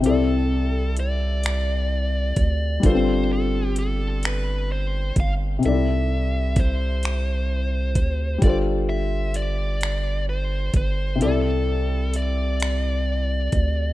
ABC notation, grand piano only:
X:1
M:6/8
L:1/8
Q:3/8=43
K:C
V:1 name="Grand piano"
[C,CEAd]6 | [G,CDFAB]6 | [C,C_E=EAd]6 | [G,DFAc]6 |
[C,CEAd]6 |]